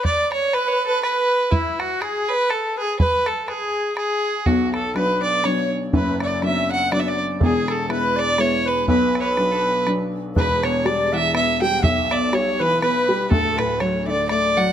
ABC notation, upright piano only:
X:1
M:3/4
L:1/8
Q:"Swing" 1/4=122
K:Bdor
V:1 name="Upright piano" clef=bass
z6 | z6 | z6 | [B,,,B,,]2 [F,B,D]2 [F,B,D]2 |
[F,,,F,,]2 [F,B,D]2 [F,B,D]2 | [E,,,E,,]2 [G,B,E]2 [G,B,E]2 | [B,,,B,,]2 [F,B,D]2 [F,B,D]2 | [K:Edor] [E,,,E,,] B,, G, E, B, G, |
B,,, B,, G, E, B, G, | [D,,,D,,] A,, F, D, A, F, |]